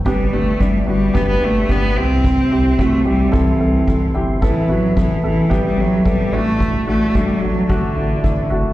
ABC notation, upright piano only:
X:1
M:4/4
L:1/8
Q:1/4=110
K:G
V:1 name="Upright piano"
[B,DG] [B,DG] [B,DE] [B,DF] [B,DG] [B,DG] [B,DG] [CEG]- | [CEG] [CEG] [CEF] [CEG] [CEA] [CEA] [CEA] [CEG] | [B,EA] [B,EF] [B,EA] [B,EA] [B,EG] [B,EG] [B,EA] [A,DF]- | [A,DF] [A,DF] [A,DF] [A,DF] [A,DF] [A,DE] [A,DE] [A,DF] |]
V:2 name="Upright piano" clef=bass
G,,3 z4 C,- | C,2 z6 | A,,3 z4 A,,- | A,,2 z6 |]